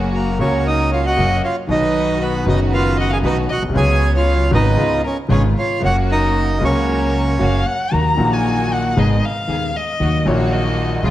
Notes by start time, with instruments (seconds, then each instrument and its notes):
Already playing: upright bass F#1, grand piano F#2 C#3 F#3 A#3 F#4, string section A#3 C#4 F#4
0.13 bandoneon A#3 A#4, violin F#4
0.38 upright bass C#2, grand piano C#2 C#3 F#3 A#3 F#4, string section A#3 C#4 F#4, bandoneon C#4 C#5, violin A#4
0.65 bandoneon D#4 D#5, violin A#4
0.92 bandoneon F4 F5, violin C#5
1.06 bandoneon F#4 F#5, violin D#5
1.16 upright bass F#1, grand piano F#2 C#3 F#3 A#3 F#4, string section A#3 C#4 F#4
1.44 bandoneon F4 F5, violin C#5
1.67 upright bass B1, grand piano B1 B2 D#3 F#3 B3, string section B3 D#4 F#4, bandoneon D#4 D#5, violin B4
1.71 grand piano F#4
2.21 bandoneon B3 B4, violin F#4
2.44 grand piano F#1 F#2 D#3 F#3 B3 F#4, upright bass F#1, string section B3 D#4 F#4, violin B4
2.49 bandoneon D#4 D#5
2.72 bandoneon F4 F5, violin B4
2.98 bandoneon F#4 F#5, violin D#5
3.10 bandoneon G#4 G#5, violin F5
3.23 upright bass B1, grand piano B1 B2 D#3 F#3 B3 F#4, string section B3 D#4 F#4, bandoneon D#4 D#5, violin B4
3.49 bandoneon F#4 F#5, violin D#5
3.56 upright bass A#1, grand piano A#1
3.62 upright bass B1, grand piano B1
3.69 upright bass C2, grand piano C2 C#3
3.74 grand piano C#2 F#3 G#3 B3, upright bass C#2, string section F#3 B3 C#4, bandoneon G#4 G#5, violin C#5
4.13 bandoneon F4 F5, violin C#5
4.51 grand piano G#1 G#2 C#3 G#3 B3 F#4, upright bass G#1, string section B3 C#4 F#4, bandoneon D#4 D#5, violin B4
4.76 grand piano C#2 C#3 G#3 B3 F4, upright bass C#2, string section B3 C#4 F4
5.04 bandoneon C#4 C#5, violin A#4
5.29 grand piano G#1 G#2 C#3 G#3 B3 F4, upright bass G#1, string section B3 C#4 F4, bandoneon C#4 C#5, violin G#4
5.58 bandoneon F4 F5, violin C#5
5.79 grand piano F#2 C#3 F#3 A#3, string section A#3 C#4 F#4
5.83 upright bass F#1, grand piano F#4, bandoneon F#4 F#5, violin C#5
6.10 bandoneon D#4 D#5, violin A#4
6.59 grand piano C#2 C#3 F#3 A#3, upright bass C#2, string section A#3 C#4 F#4
6.63 bandoneon C#4 C#5, grand piano F#4, violin A#4
7.38 upright bass F#1, grand piano F#2 C#3 F#3 A#3 F#4, string section A#3 C#4 F#4, violin F5
7.67 violin F#5
7.91 grand piano D#2 D#3 F#3 A#3 F#4, upright bass D#2, string section A#3 D#4 F#4, violin A#5
8.16 grand piano A#1 A#2 D#3 F#3 A#3, upright bass A#1, string section A#3 D#4 F#4
8.20 grand piano F#4
8.34 violin G#5
8.73 violin F#5
8.96 grand piano G#1 G#2 D#3 G#3 B3 G#4, upright bass G#1, string section B3 D#4 G#4, violin D#5
9.25 violin F5
9.47 grand piano D#1 D#2 D#3 G#3 B3 G#4, upright bass D#2, string section B3 D#4 G#4
9.77 violin D#5
10.00 grand piano D#2 D#3 F#3 A#3 F#4, upright bass D#2, string section A#3 D#4 F#4
10.24 upright bass A#1, grand piano A#1 A#2 D#3 F#3 A#3, string section A#3 D#4 F#4, violin C#5
10.28 grand piano F#4
10.52 violin D#5
11.03 upright bass C#2, grand piano C#2 C#3 F3 G#3 F4, string section G#3 C#4 F4